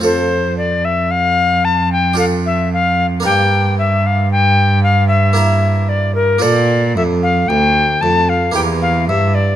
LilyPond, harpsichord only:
<<
  \new Staff \with { instrumentName = "Harpsichord" } { \time 3/4 \key f \major \tempo 4 = 56 <c' f' a'>2 <d' f' a'>4 | <bes d' bes'>2 <bes e' bes'>4 | <bes f' a'>2 <bes e' g'>4 | }
  \new Staff \with { instrumentName = "Harpsichord" } { \clef bass \time 3/4 \key f \major f,2. | g,2. | bes,8 f,8 d,8 f,8 e,8 g,8 | }
>>